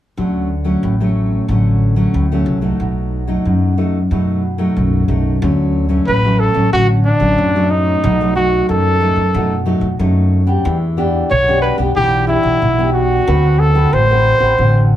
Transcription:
0.17 0.73 D2 medium
0.17 0.80 D3 soft
0.17 0.48 F#3 soft
0.17 0.49 A3 soft
0.17 0.49 C#4 soft
0.64 0.93 F#3 medium
0.64 0.94 A3 soft
0.64 0.94 C#4 medium
0.83 1.39 A1 medium
0.83 1.46 A2 soft
1.00 1.44 F#3 medium
1.00 1.44 A3 medium
1.00 1.45 C#4 medium
1.48 2.04 A1 medium
1.48 2.12 D3 soft
1.48 1.93 F#3 soft
1.48 1.94 A3 soft
1.48 1.94 C#4 medium
1.96 2.25 F#3 medium
1.96 2.25 A3 medium
1.96 2.25 C#4 medium
2.14 2.42 D2 medium
2.14 2.77 A2 soft
2.32 2.59 F#3 medium
2.32 2.59 A3 medium
2.32 2.59 C#4 medium
2.46 2.74 C2 medium
2.61 3.23 F#3 soft
2.61 3.23 A3 medium
2.61 3.23 D#4 medium
2.80 3.36 B1 medium
2.80 3.43 B2 soft
3.27 3.72 F#3 soft
3.27 3.73 A3 soft
3.27 3.73 D#4 medium
3.45 4.01 F#2 medium
3.45 4.08 F#2 soft
3.77 3.97 F#3 soft
3.77 3.97 A3 medium
3.77 3.98 D#4 medium
4.11 4.67 F#2 medium
4.11 4.74 B2 medium
4.11 4.42 F#3 soft
4.11 4.42 A3 medium
4.11 4.42 D#4 medium
4.58 5.03 F#3 medium
4.58 5.03 A3 medium
4.58 5.04 D#4 medium
4.76 5.04 B1 medium
4.76 5.39 F#2 soft
5.08 5.37 B1 medium
5.08 5.36 F#3 medium
5.08 5.36 A3 medium
5.08 5.37 D#4 medium
5.42 5.98 D2 loud
5.42 6.04 D3 medium
5.42 5.86 F#3 medium
5.42 5.86 A3 soft
5.42 5.86 C#4 medium
5.89 6.18 F#3 medium
5.89 6.18 A3 medium
5.89 6.18 C#4 medium
6.07 6.49 A1 medium
6.07 6.70 A2 soft
6.07 6.41 B4 medium
6.24 6.52 F#3 medium
6.24 6.52 A3 medium
6.24 6.52 C#4 medium
6.39 6.72 A4 medium
6.54 6.69 A1 medium
6.54 6.66 F#3 medium
6.54 6.67 A3 medium
6.54 6.67 C#4 medium
6.73 7.15 A1 medium
6.73 7.35 D3 medium
6.73 7.04 F#3 medium
6.73 7.04 A3 medium
6.73 7.04 C#4 medium
6.73 6.88 F#4 loud
7.05 7.72 D4 medium
7.20 7.35 A1 medium
7.20 7.48 F#3 medium
7.20 7.49 A3 medium
7.20 7.49 C#4 medium
7.38 7.94 F#2 medium
7.38 8.01 A2 medium
7.55 7.99 F#3 medium
7.55 7.99 A3 medium
7.55 7.99 C#4 medium
7.70 8.35 D#4 medium
8.03 8.59 B1 loud
8.03 8.66 B2 medium
8.03 8.15 F#3 medium
8.03 8.15 A3 medium
8.03 8.15 D#4 medium
8.21 8.32 F#3 medium
8.21 8.32 A3 medium
8.21 8.32 D#4 medium
8.35 8.96 F#3 medium
8.35 8.96 A3 medium
8.35 8.97 D#4 medium
8.35 8.66 F#4 medium
8.69 9.31 F#2 soft
8.69 9.11 F#2 medium
8.69 9.63 A4 medium
9.01 9.20 F#3 medium
9.01 9.21 A3 medium
9.01 9.21 D#4 medium
9.16 9.31 F#2 medium
9.34 9.76 F#2 medium
9.34 9.97 B2 medium
9.34 9.54 F#3 medium
9.34 9.54 A3 medium
9.34 9.54 D#4 medium
9.66 9.86 F#3 medium
9.66 9.86 A3 medium
9.66 9.86 D#4 medium
9.81 9.96 F#2 medium
9.99 10.62 F#2 soft
9.99 10.55 F#2 medium
9.99 10.44 F#3 soft
9.99 10.44 A3 soft
9.99 10.44 D#4 medium
10.46 10.75 B3 medium
10.46 10.76 D4 medium
10.46 10.76 G4 medium
10.65 11.21 E2 loud
10.65 11.28 E3 medium
10.97 11.28 B3 medium
10.97 11.29 D4 medium
10.97 11.29 G4 medium
11.31 11.73 B1 medium
11.31 11.93 B2 soft
11.31 11.61 C#5 loud
11.48 11.75 B3 medium
11.48 11.75 D4 medium
11.48 11.75 G4 medium
11.62 11.77 B4 medium
11.78 11.93 B1 medium
11.78 11.90 B3 medium
11.78 11.90 D4 medium
11.78 11.91 G4 medium
11.96 12.38 B1 medium
11.96 12.59 E3 medium
11.96 12.24 B3 soft
11.96 12.24 D4 soft
11.96 12.27 G4 loud
11.96 12.24 G4 medium
12.27 12.59 B3 medium
12.27 12.59 D4 medium
12.27 12.90 E4 medium
12.27 12.60 G4 medium
12.43 12.58 B1 medium
12.62 13.18 B1 medium
12.62 13.24 B2 soft
12.79 13.22 B3 medium
12.79 13.22 D4 medium
12.79 13.23 G4 medium
12.93 13.61 F#4 medium
13.27 13.83 D2 loud
13.27 13.89 D3 medium
13.27 13.71 C4 medium
13.27 13.71 F#4 medium
13.27 13.72 B4 medium
13.59 13.95 A4 medium
13.74 14.03 C4 medium
13.74 14.03 F#4 medium
13.74 14.03 B4 medium
13.93 14.35 A1 medium
13.93 14.55 A2 medium
13.93 14.91 C5 medium
14.10 14.37 C4 medium
14.10 14.37 F#4 medium
14.10 14.37 B4 medium
14.40 14.55 A1 medium
14.40 14.52 C4 medium
14.40 14.52 F#4 medium
14.40 14.52 B4 medium
14.58 14.96 A1 medium
14.58 14.96 D3 soft
14.58 14.89 C4 soft
14.58 14.89 F#4 soft

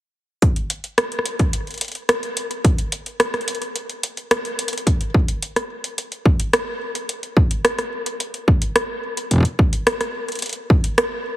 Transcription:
0.42 kick loud
0.42 closed hi-hat medium
0.56 closed hi-hat soft
0.70 closed hi-hat medium
0.84 closed hi-hat soft
0.98 cross-stick loud
0.98 closed hi-hat medium
1.12 closed hi-hat soft
1.19 cross-stick medium
1.26 closed hi-hat medium
1.39 kick medium
1.39 closed hi-hat soft
1.53 closed hi-hat medium
1.67 closed hi-hat soft
1.71 closed hi-hat soft
1.74 closed hi-hat soft
1.78 closed hi-hat soft
1.81 closed hi-hat medium
1.85 closed hi-hat soft
1.88 closed hi-hat soft
1.92 closed hi-hat soft
1.95 closed hi-hat soft
2.09 cross-stick loud
2.09 closed hi-hat medium
2.23 closed hi-hat soft
2.37 closed hi-hat medium
2.51 closed hi-hat soft
2.65 kick loud
2.65 closed hi-hat medium
2.78 closed hi-hat soft
2.92 closed hi-hat medium
3.06 closed hi-hat soft
3.20 cross-stick loud
3.20 closed hi-hat medium
3.34 cross-stick medium
3.34 closed hi-hat soft
3.41 closed hi-hat soft
3.48 closed hi-hat medium
3.55 closed hi-hat soft
3.62 closed hi-hat soft
3.76 closed hi-hat medium
3.90 closed hi-hat soft
4.03 closed hi-hat medium
4.17 closed hi-hat soft
4.31 cross-stick loud
4.31 closed hi-hat medium
4.45 closed hi-hat soft
4.59 closed hi-hat medium
4.68 closed hi-hat medium
4.73 closed hi-hat soft
4.78 closed hi-hat medium
4.87 kick medium
4.87 closed hi-hat medium
5.01 closed hi-hat soft
5.14 kick loud
5.28 closed hi-hat soft
5.42 closed hi-hat medium
5.56 cross-stick medium
5.56 closed hi-hat soft
5.84 closed hi-hat medium
5.98 closed hi-hat medium
6.12 closed hi-hat soft
6.25 kick loud
6.40 closed hi-hat medium
6.53 cross-stick loud
6.53 closed hi-hat medium
6.95 closed hi-hat soft
7.09 closed hi-hat medium
7.23 closed hi-hat soft
7.37 kick loud
7.51 closed hi-hat medium
7.65 cross-stick loud
7.65 closed hi-hat medium
7.79 cross-stick medium
7.79 closed hi-hat soft
8.06 closed hi-hat medium
8.20 closed hi-hat medium
8.34 closed hi-hat soft
8.48 kick loud
8.62 closed hi-hat medium
8.76 cross-stick loud
8.76 closed hi-hat medium
9.17 closed hi-hat soft
9.31 kick soft
9.31 closed hi-hat medium
9.33 kick soft
9.36 kick medium
9.38 kick medium
9.40 kick medium
9.43 kick medium
9.43 closed hi-hat soft
9.59 kick loud
9.73 closed hi-hat soft
9.87 cross-stick loud
9.87 closed hi-hat medium
10.01 cross-stick medium
10.01 closed hi-hat soft
10.28 closed hi-hat soft
10.32 closed hi-hat soft
10.35 closed hi-hat soft
10.39 closed hi-hat soft
10.42 closed hi-hat medium
10.46 closed hi-hat soft
10.49 closed hi-hat soft
10.53 closed hi-hat soft
10.70 kick loud
10.84 closed hi-hat medium
10.98 cross-stick loud
10.98 closed hi-hat medium

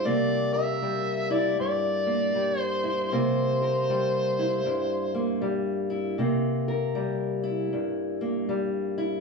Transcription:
0.00 0.82 G3 medium
0.05 1.58 C3 medium
0.05 2.06 A#3 medium
0.05 0.53 D5 loud
0.53 3.15 A#4 medium
0.53 1.34 E5 loud
0.82 2.34 G3 medium
1.30 2.83 E4 medium
1.30 1.59 D5 medium
1.59 3.12 G2 medium
1.59 2.59 D5 medium
2.06 3.12 A#3 soft
2.34 3.89 G3 medium
2.59 3.13 C5 medium
2.84 3.16 E4 medium
3.12 4.65 C3 medium
3.12 5.13 A#3 medium
3.12 5.43 C5 medium
3.62 6.16 A#4 medium
3.90 5.40 G3 medium
4.39 5.89 E4 medium
4.65 6.19 G2 medium
5.14 6.18 A#3 medium
5.42 6.15 G3 medium
5.90 6.15 E4 medium
6.18 7.72 C3 medium
6.18 8.20 A#3 medium
6.68 9.20 A#4 medium
6.95 8.48 G3 medium
7.43 8.96 E4 medium
7.73 9.20 G2 medium
8.21 9.20 A#3 medium
8.49 9.20 G3 medium
8.98 9.20 E4 medium

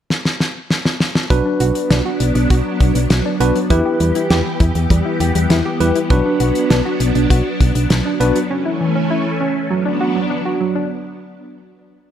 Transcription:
0.10 snare medium
0.25 snare medium
0.40 snare medium
0.70 snare medium
0.85 snare medium
1.00 snare loud
1.15 snare loud
1.30 1.42 B1 loud
1.30 3.68 F#3 medium
1.30 1.44 F#3 loud
1.30 3.68 B3 medium
1.30 2.01 D4 medium
1.30 3.68 D4 medium
1.30 2.01 F#4 medium
1.30 2.01 B4 medium
1.30 kick loud
1.30 closed hi-hat medium
1.45 1.59 D4 medium
1.60 1.72 B1 loud
1.60 1.74 F#4 medium
1.60 closed hi-hat medium
1.75 closed hi-hat soft
1.90 2.02 B1 loud
1.90 2.04 D4 medium
1.90 snare loud
1.90 closed hi-hat medium
2.05 2.19 F#4 medium
2.20 2.32 B1 loud
2.20 closed hi-hat medium
2.35 2.47 B1 medium
2.35 2.49 D4 medium
2.35 closed hi-hat soft
2.50 2.62 B1 loud
2.50 2.64 F#4 loud
2.50 kick medium
2.50 closed hi-hat medium
2.80 2.92 B1 loud
2.80 kick medium
2.80 closed hi-hat medium
2.95 3.07 B1 loud
2.95 closed hi-hat medium
3.10 3.22 B1 medium
3.10 3.24 F#3 medium
3.10 snare loud
3.10 closed hi-hat medium
3.25 3.39 D4 medium
3.40 3.52 B1 loud
3.40 3.58 D4 medium
3.40 3.54 F#4 medium
3.40 3.58 F#4 medium
3.40 3.58 B4 medium
3.40 closed hi-hat medium
3.55 3.69 F#3 medium
3.55 closed hi-hat soft
3.70 3.82 E2 loud
3.70 6.08 E3 medium
3.70 8.46 B3 medium
3.70 4.41 E4 medium
3.70 3.84 E4 loud
3.70 4.41 G4 medium
3.70 6.08 G4 medium
3.70 4.41 B4 medium
3.70 kick loud
3.70 closed hi-hat medium
3.85 3.99 G4 medium
4.00 4.12 E2 loud
4.00 4.14 G3 medium
4.00 closed hi-hat medium
4.15 4.29 E4 medium
4.15 closed hi-hat medium
4.30 4.42 E2 loud
4.30 4.44 G4 medium
4.30 snare loud
4.30 closed hi-hat medium
4.60 4.72 E2 medium
4.60 4.74 E4 medium
4.60 kick loud
4.60 closed hi-hat medium
4.75 4.87 E2 medium
4.75 closed hi-hat medium
4.90 5.02 E2 loud
4.90 5.04 G3 medium
4.90 kick medium
4.90 closed hi-hat medium
5.05 5.19 E4 medium
5.20 5.32 E2 loud
5.20 5.34 G4 medium
5.20 closed hi-hat medium
5.35 5.47 E2 medium
5.35 5.49 G3 medium
5.35 closed hi-hat medium
5.50 5.62 E2 loud
5.50 5.64 E4 medium
5.50 snare loud
5.50 closed hi-hat medium
5.65 5.79 G4 medium
5.80 5.92 E2 medium
5.80 5.94 G3 medium
5.80 5.98 E4 medium
5.80 5.98 G4 medium
5.80 5.98 B4 loud
5.80 closed hi-hat medium
5.95 6.09 E4 medium
5.95 closed hi-hat soft
6.10 6.22 B1 loud
6.10 8.48 F#3 medium
6.10 6.24 F#3 loud
6.10 8.48 D4 medium
6.10 6.81 D4 medium
6.10 6.81 F#4 medium
6.10 6.81 B4 medium
6.10 kick loud
6.10 closed hi-hat medium
6.25 6.39 D4 medium
6.40 6.52 B1 loud
6.40 6.54 F#4 medium
6.40 closed hi-hat medium
6.55 closed hi-hat medium
6.70 6.82 B1 loud
6.70 6.84 D4 medium
6.70 snare loud
6.70 closed hi-hat medium
6.85 6.99 F#4 medium
7.00 7.12 B1 loud
7.00 closed hi-hat medium
7.15 7.27 B1 medium
7.15 7.29 D4 medium
7.15 closed hi-hat medium
7.30 7.42 B1 loud
7.30 7.44 F#4 loud
7.30 kick medium
7.30 closed hi-hat medium
7.60 7.72 B1 loud
7.60 kick medium
7.60 closed hi-hat medium
7.75 7.87 B1 loud
7.75 closed hi-hat medium
7.90 8.02 B1 loud
7.90 8.04 F#3 medium
7.90 snare loud
7.90 closed hi-hat medium
8.05 8.19 D4 medium
8.20 8.32 B1 loud
8.20 8.38 D4 medium
8.20 8.34 F#4 medium
8.20 8.38 F#4 medium
8.20 8.38 B4 medium
8.20 closed hi-hat medium
8.35 8.49 F#3 medium
8.35 closed hi-hat soft
8.50 9.69 E3 medium
8.50 9.69 A3 medium
8.50 9.69 C#4 medium
8.50 8.64 C#4 loud
8.65 8.79 E4 medium
8.80 8.94 E3 medium
8.95 9.09 C#4 medium
9.10 9.24 E4 medium
9.40 9.54 C#4 medium
9.70 10.89 F#3 medium
9.70 9.84 F#3 medium
9.70 10.89 B3 medium
9.70 10.89 D4 medium
9.85 9.99 D4 medium
10.00 10.14 F#4 medium
10.15 10.29 F#3 medium
10.30 10.44 D4 medium
10.45 10.59 F#4 medium
10.60 10.74 F#3 medium
10.75 10.89 D4 medium

